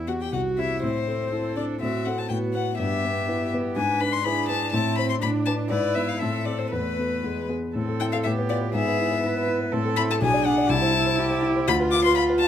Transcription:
Already playing: grand piano E2
0.08 grand piano B3 G4, viola F#4, violin F#5
0.21 viola G4, violin G5
0.32 grand piano C2, cello F#4, viola F#4, violin F#5
0.58 grand piano C4 G4, viola E4, violin E5
0.82 grand piano A2, viola C4, cello E4, violin C5
1.07 grand piano C4 A4
1.32 grand piano E4 A4, cello A4
1.56 grand piano C4 A4, viola D4, violin D5
1.81 grand piano A2, viola C4, cello F#4, violin E5
2.05 grand piano C4 A4, violin F#5
2.18 violin A5
2.29 grand piano A2, viola B3, cello F#4, violin G5
2.53 grand piano B3 B4, violin F#5
2.78 grand piano G2, viola B3, cello G4, violin E5
3.04 grand piano B3 B4
3.28 grand piano E4 B4
3.53 grand piano B3 B4
3.76 grand piano G#2, viola D4, cello B4, violin G#5
4.00 grand piano D4 B4, violin B5
4.12 violin C6
4.24 viola D4, grand piano E4 B4, cello G#4, violin B5
4.48 grand piano D4 B4, violin A5
4.72 grand piano A2, viola C4, cello E4, violin A5
4.98 grand piano C4 C5, violin B5
5.10 violin C6
5.21 grand piano A2, cello D4, viola D4, violin B5
5.46 grand piano D4 B4, violin A5
5.70 grand piano G#2, viola E4, cello B4, violin D5
5.95 grand piano B3 B4, violin E5
6.08 violin F5
6.19 grand piano A2, viola C4, cello A4, violin E5
6.46 grand piano C4 A4, violin D5
6.59 violin C5
6.71 grand piano E2, viola A3, violin B4, cello B4
6.98 grand piano B3 A4
7.24 grand piano E2, viola G#3
7.49 grand piano B3 G#4
7.75 grand piano A2, viola C4, cello A4
7.88 grand piano A4
8.00 grand piano E4, violin G5
8.12 grand piano A4, violin F5
8.24 grand piano A2, viola B3, cello G4, violin E5
8.38 grand piano B4
8.49 grand piano F4, violin D5
8.62 grand piano B4
8.74 grand piano G#2, viola B3, cello G#4, violin E5
8.86 grand piano B4
8.99 grand piano E4
9.11 grand piano B4
9.24 grand piano E4, cello B4
9.36 grand piano B4
9.48 grand piano E4
9.60 grand piano B4
9.72 grand piano A2, viola C4, cello A4
9.85 grand piano A4
9.96 grand piano E4, violin B5
10.09 grand piano A4, violin A5
10.21 grand piano B1, viola D4, cello G#4, violin G#5
10.34 grand piano D5
10.45 grand piano D4, violin F#5
10.58 grand piano D5
10.69 grand piano C2, cello E4, viola E4, violin A5
10.81 grand piano C5
10.93 grand piano E4
11.06 grand piano C5
11.18 grand piano E4, cello G4
11.30 grand piano C5
11.42 grand piano E4
11.56 grand piano C5
11.67 grand piano D2, viola F4, cello F4, violin B5
11.80 grand piano B4
11.91 grand piano F4, violin D6
12.04 grand piano B4, violin C6
12.15 viola F4, grand piano F4, violin B5
12.29 grand piano B4
12.39 grand piano F4, violin A5

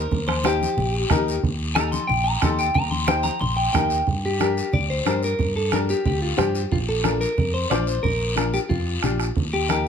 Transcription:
Already playing: clean electric guitar A#4
0.11 fingered electric bass D#2, bombo low, high conga, low conga, long guiro
0.28 clean electric guitar C5, bombo rim, high conga
0.44 upright piano D#4 G4 C5, clean electric guitar G4, bombo rim, high conga, short guiro
0.61 high conga, short guiro
0.77 fingered electric bass A#1, high conga, low conga, long guiro
1.10 fingered electric bass D#2, upright piano D#4 G4 A#4, bombo low, bombo rim, high conga, low conga, short guiro
1.28 short guiro
1.43 fingered electric bass D#2, bombo low, high conga, long guiro
1.75 upright piano D#4 G4 A4, clean electric guitar A#5, bombo rim, high conga, short guiro
1.92 clean electric guitar C6, high conga, short guiro
2.07 fingered electric bass A#1, clean electric guitar G5, high conga, low conga, long guiro
2.24 clean electric guitar A#5
2.42 fingered electric bass D#2, upright piano D#4 G4 A4, clean electric guitar C6, bombo low, bombo rim, high conga, short guiro
2.59 clean electric guitar G5, short guiro
2.74 fingered electric bass D#2, clean electric guitar A#5, bombo low, high conga, low conga, long guiro
2.91 clean electric guitar C6, high conga
3.07 upright piano D#4 G4 C5, clean electric guitar G5, bombo rim, high conga, short guiro
3.23 clean electric guitar A#5, high conga, short guiro
3.39 fingered electric bass A#1, clean electric guitar C6, high conga, low conga, long guiro
3.57 clean electric guitar G5
3.73 fingered electric bass D#2, upright piano D#4 G4 A#4, clean electric guitar G5, bombo low, bombo rim, high conga, low conga, short guiro
3.90 short guiro
4.07 fingered electric bass G2, bombo low, high conga, long guiro
4.25 clean electric guitar G4
4.40 upright piano D4 G4 A#4, clean electric guitar G4, bombo rim, high conga, short guiro
4.57 short guiro
4.73 fingered electric bass D2, clean electric guitar D5, bombo low, high conga, low conga, long guiro
4.90 clean electric guitar C5
5.06 fingered electric bass G2, upright piano D4 G4 A#4, clean electric guitar C5, bombo rim, high conga, short guiro
5.23 clean electric guitar A#4, short guiro
5.39 fingered electric bass G2, bombo low, high conga, low conga, long guiro
5.56 clean electric guitar A4
5.72 upright piano D4 G4 A#4, clean electric guitar A#4, bombo rim, high conga, short guiro
5.89 clean electric guitar G4, short guiro
6.05 fingered electric bass D2, clean electric guitar G4, bombo low, high conga, low conga, long guiro
6.22 clean electric guitar F4
6.37 fingered electric bass G2, upright piano D4 G4 C5, clean electric guitar G4, bombo rim, high conga, low conga, short guiro
6.55 short guiro
6.72 fingered electric bass A#1, clean electric guitar F4, bombo low, high conga, long guiro
6.89 clean electric guitar A4
7.04 upright piano D4 F4 A#4, bombo rim, high conga, short guiro
7.21 clean electric guitar A#4, short guiro
7.38 fingered electric bass F2, bombo low, high conga, low conga, long guiro
7.54 clean electric guitar C5
7.70 fingered electric bass A#1, upright piano D4 F4 C5, clean electric guitar D5, bombo rim, high conga, short guiro
7.87 clean electric guitar C5, short guiro
8.03 fingered electric bass A#1, clean electric guitar A#4, bombo low, high conga, low conga, long guiro
8.36 upright piano D4 F4 A#4, bombo rim, high conga, short guiro
8.54 clean electric guitar G4, short guiro
8.69 fingered electric bass F2, clean electric guitar F4, bombo low, high conga, low conga, long guiro
9.03 fingered electric bass A#1, upright piano D4 F4 G4, bombo rim, high conga, low conga, short guiro
9.20 bombo rim, short guiro
9.36 fingered electric bass D#2, bombo low, high conga, long guiro
9.53 clean electric guitar G4
9.69 upright piano D#4 G4 A#4, clean electric guitar G4, bombo rim, high conga, short guiro

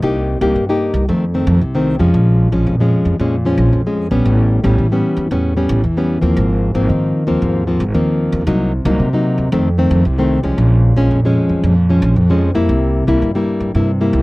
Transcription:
0.02 upright bass C2, nylon-string guitar C3 A#3 D#4 G4
0.41 upright bass C2, nylon-string guitar A#3 D#4 G4
0.56 nylon-string guitar G2, upright bass C3
0.69 nylon-string guitar A#3 D#4 G4
0.94 upright bass C2
1.08 nylon-string guitar F2 D#3 A3 C4, upright bass F2
1.34 nylon-string guitar D#3 A3 C4
1.47 upright bass F2
1.61 upright bass C2, nylon-string guitar C3
1.75 nylon-string guitar D#3 A3 C4
1.99 upright bass F2, nylon-string guitar F3 G#3 C#4
2.14 upright bass A#1, nylon-string guitar A#2
2.52 upright bass A#1, nylon-string guitar F3 G#3 C#4
2.67 nylon-string guitar F2, upright bass A#2
2.80 nylon-string guitar F3 G#3 C#4
3.05 upright bass F2
3.19 upright bass F2, nylon-string guitar A#2 F3 G#3 C#4
3.45 nylon-string guitar F3 G#3 C#4
3.58 upright bass A#1
3.72 nylon-string guitar F2, upright bass F2
3.86 nylon-string guitar F3 G#3 C#4
4.11 upright bass A#1, nylon-string guitar G3 B3 C#4
4.25 upright bass A1, nylon-string guitar A2
4.64 upright bass A1, nylon-string guitar G3 B3 C#4
4.78 upright bass A2, nylon-string guitar E3
4.92 nylon-string guitar G3 B3 C#4
5.17 upright bass E2
5.31 upright bass E2, nylon-string guitar A2 G3 B3 C#4
5.57 nylon-string guitar G3 B3 C#4
5.69 upright bass A1
5.83 upright bass E2, nylon-string guitar E3
5.97 nylon-string guitar G3 B3 C#4
6.21 upright bass D#2, nylon-string guitar F3 A#3 C4
6.36 upright bass G#1, nylon-string guitar G#2
6.74 upright bass G#1, nylon-string guitar F3 A#3 C4
6.89 upright bass G#2, nylon-string guitar D#3
7.27 upright bass D#2, nylon-string guitar F3 A#3 C4
7.41 upright bass D#2, nylon-string guitar G#2
7.67 nylon-string guitar F3 A#3 C4
7.80 upright bass G#1
7.94 upright bass D#2, nylon-string guitar D#3 F3 A#3 C4
8.32 upright bass D#2
8.47 upright bass C2, nylon-string guitar C3 F#3 A#3 D#4
8.85 upright bass C2, nylon-string guitar F#3 A#3 D#4
8.99 nylon-string guitar C3, upright bass C3
9.13 nylon-string guitar F#3 A#3 D#4
9.38 upright bass D#2
9.52 upright bass F2, nylon-string guitar F2 D#3 A3 C4
9.78 nylon-string guitar D#3 A3 C4
9.91 upright bass F2
10.05 upright bass C2, nylon-string guitar C3
10.18 nylon-string guitar D#3 A3 C4
10.43 upright bass C2, nylon-string guitar F3 G#3 C#4
10.58 upright bass A#1, nylon-string guitar A#2
10.96 upright bass A#1, nylon-string guitar F3 G#3 C#4
11.11 nylon-string guitar F2, upright bass A#2
11.25 nylon-string guitar F3 G#3 C#4
11.49 upright bass F2
11.63 upright bass F2, nylon-string guitar A#2
11.90 nylon-string guitar F3 G#3 C#4
12.02 upright bass A#1
12.16 upright bass F2, nylon-string guitar F2
12.30 nylon-string guitar F3 G#3 C#4
12.54 upright bass F2, nylon-string guitar G3 A#3 E4
12.69 upright bass C2, nylon-string guitar C3
13.07 upright bass C2, nylon-string guitar G3 A#3 E4
13.22 nylon-string guitar G2, upright bass C3
13.35 nylon-string guitar G3 A#3 E4
13.60 upright bass G2
13.75 upright bass G2, nylon-string guitar C3 G3 A#3 E4
14.01 nylon-string guitar G3 A#3 E4
14.13 upright bass C2

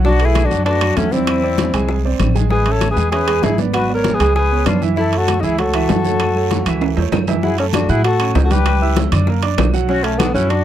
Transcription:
Already playing: upright bass B1
0.05 grand piano F#3 F#4 F#5, tenor saxophone D4, flute F#4, high bongo, high conga, long guiro
0.20 grand piano A3 A4 B4, high conga, high timbale
0.25 tenor saxophone E4, flute G#4
0.35 high bongo, high conga, high timbale, short guiro, claves
0.45 tenor saxophone D4, flute F#4
0.50 upright bass F#2, grand piano F#3 F#4 F#5, high bongo, high conga, short guiro
0.66 grand piano A3 A4 B4, tenor saxophone D4, flute F#4, high bongo, high conga, high timbale, long guiro
0.81 grand piano F#3 F#4 F#5, high conga, high timbale, claves
0.97 upright bass E2, tenor saxophone A3, flute C#4, high bongo, low bongo, high conga, high timbale, short guiro
1.12 tenor saxophone C4, grand piano C4 C5 D5, flute E4, high bongo, high conga, short guiro
1.27 high bongo, high conga, high timbale, long guiro, claves
1.43 grand piano C4 C5 D5, high conga
1.58 high bongo, high conga, high timbale, short guiro
1.73 upright bass C2, grand piano G#3 G#4 G#5, high bongo, high conga, high timbale, short guiro, claves
1.89 high bongo, high conga, long guiro
2.05 grand piano C4 C5 D5, high conga
2.19 upright bass A1, high bongo, low bongo, high conga, high timbale, short guiro, claves
2.35 grand piano G#3 G#4 G#5, high bongo, high conga, short guiro
2.50 grand piano G#3 G#4 G#5, tenor saxophone G#4, flute B4, high bongo, high conga, long guiro
2.66 grand piano C#4 C#5 E5, high conga, high timbale
2.72 tenor saxophone A4, flute C#5
2.81 high bongo, high conga, high timbale, short guiro, claves
2.91 tenor saxophone G#4, flute B4
2.96 upright bass E2, grand piano G#3 G#4 G#5, high bongo, high conga, short guiro
3.12 grand piano C#4 C#5 E5, tenor saxophone G#4, flute B4, high bongo, high conga, high timbale, long guiro
3.27 grand piano G#3 G#4 G#5, high conga, high timbale, claves
3.42 upright bass G#1, tenor saxophone E4, flute G#4, high bongo, low bongo, high conga, high timbale, low timbale, short guiro
3.58 grand piano B3 B4 D5, high bongo, high conga, short guiro
3.74 tenor saxophone F#4, flute B4, high bongo, high conga, high timbale, long guiro, claves
3.89 grand piano B3 B4 D5, high conga
3.94 tenor saxophone A#4, flute C#5
4.04 high bongo, high conga, high timbale, short guiro
4.14 tenor saxophone G#4, flute B4
4.19 upright bass C#2, grand piano G#3 G#4 G#5, high bongo, high conga, high timbale, short guiro, claves
4.36 tenor saxophone G#4, flute B4, high bongo, high conga, long guiro
4.51 grand piano B3 B4 C#5, high conga
4.66 upright bass F#2, tenor saxophone D4, flute F4, high bongo, low bongo, high conga, high timbale, short guiro, claves
4.81 grand piano E3 E4 E5, high bongo, high conga, short guiro
4.97 grand piano E3 E4 E5, tenor saxophone E4, flute A4, high bongo, high conga, long guiro
5.13 grand piano A3 A4 C#5, high conga, high timbale
5.17 tenor saxophone F#4, flute A4
5.28 high bongo, high conga, high timbale, short guiro, claves
5.40 upright bass C#2, grand piano E3, tenor saxophone D#4, flute F#4 G#4, high bongo, short guiro
5.44 grand piano E4 E5, tenor saxophone E4, high conga
5.58 grand piano A3 A4 C#5, tenor saxophone F#4, flute A4, high bongo, high conga, high timbale, long guiro
5.74 grand piano E3 E4 E5, high conga, high timbale, claves
5.89 upright bass F#2, high bongo, low bongo, high conga, high timbale, low timbale, short guiro
6.04 grand piano A3 A4 C#5, high bongo, high conga, short guiro
6.20 high bongo, high conga, high timbale, long guiro, claves
6.35 grand piano A3 A4 C#5, high conga
6.51 high bongo, high conga, high timbale, short guiro
6.66 upright bass C#2, grand piano E3 E4 E5, high bongo, high conga, high timbale, short guiro, claves
6.81 high bongo, high conga, high timbale, long guiro
6.97 upright bass E2, grand piano A3 A4 C#5, high conga, low timbale
7.12 upright bass F#2, high bongo, low bongo, high conga, low timbale, short guiro, claves
7.27 grand piano E3 E4 E5, high bongo, high conga, low timbale, short guiro
7.43 grand piano F#3 F#4 F#5, tenor saxophone E4, flute G#4, high bongo, high conga, long guiro
7.58 grand piano A3 A4 A5, tenor saxophone C#4, flute E4, high conga, high timbale
7.73 tenor saxophone D4, flute F#4, high bongo, high conga, high timbale, low timbale, short guiro, claves
7.89 upright bass A2, tenor saxophone E4, grand piano F#4 F#5 F#6, flute G#4, high conga, short guiro
8.04 tenor saxophone F#4, flute A4, high bongo, high conga, high timbale, long guiro
8.19 grand piano C#4 C#5 C#6, high conga, high timbale, claves
8.35 upright bass C#2, high bongo, low bongo, high conga, low timbale, short guiro
8.44 tenor saxophone F#4, flute A4
8.51 grand piano G3 G4 G5, tenor saxophone G4, flute B4, high conga, high timbale, short guiro
8.66 high bongo, high conga, high timbale, long guiro, claves
8.81 grand piano E4 E5 E6, high bongo, high conga
8.96 high bongo, high conga, high timbale, low timbale, short guiro
9.12 upright bass F#2, grand piano D4 D5 D6, high bongo, high conga, low conga, high timbale, short guiro, claves
9.27 grand piano A#3 A#4 A#5, high bongo, high conga, long guiro
9.43 grand piano D4 D5 D6, high bongo, high conga, high timbale
9.58 upright bass B1, high bongo, low bongo, high conga, high timbale, low timbale, short guiro, claves
9.73 grand piano F#3 F#4 F#5, short guiro
9.88 grand piano F#3 F#4 F#5, tenor saxophone C#4, flute F#4, high bongo, high conga, long guiro
10.04 tenor saxophone A3, grand piano A3 A4 A5, flute C#4, high conga, high timbale
10.19 tenor saxophone B3, flute D4, high bongo, high conga, high timbale, low timbale, short guiro, claves
10.33 upright bass F#2, tenor saxophone C#4, flute E4, grand piano F#4 F#5 F#6, high conga, short guiro
10.50 tenor saxophone D4, flute F#4, high bongo, high conga, high timbale, long guiro

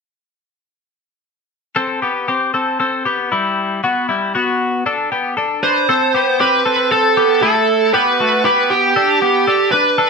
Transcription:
1.76 clean electric guitar C4 A4
2.02 clean electric guitar B3 G4
2.28 clean electric guitar C4 G4
2.54 clean electric guitar C4 A4
2.80 clean electric guitar C4 A4
3.05 clean electric guitar B3 G4
3.32 clean electric guitar G3 E4
3.84 clean electric guitar B3 F#4
4.09 clean electric guitar G3 E4
4.35 clean electric guitar B3 F#4
4.86 clean electric guitar D4 A4
5.12 clean electric guitar B3 G4
5.37 clean electric guitar D4 A4
5.63 clean electric guitar D4 B4, lead electric guitar C5
5.89 clean electric guitar C4 A4
6.14 clean electric guitar B3 G4
6.40 clean electric guitar C4 G4, lead electric guitar B4
6.66 clean electric guitar C4 A4
6.91 clean electric guitar C4 A4, lead electric guitar A4
7.17 clean electric guitar B3 G4
7.42 clean electric guitar A3 E4, lead electric guitar A4
7.94 clean electric guitar B3 G4, lead electric guitar B4
8.20 clean electric guitar A3 F#4
8.45 clean electric guitar B3 G4, lead electric guitar B4
8.70 lead electric guitar G4
8.96 clean electric guitar D4 A4
9.22 clean electric guitar B3 G4
9.47 clean electric guitar D4 A4
9.72 clean electric guitar D4 B4, lead electric guitar B4
9.98 clean electric guitar D4 A4

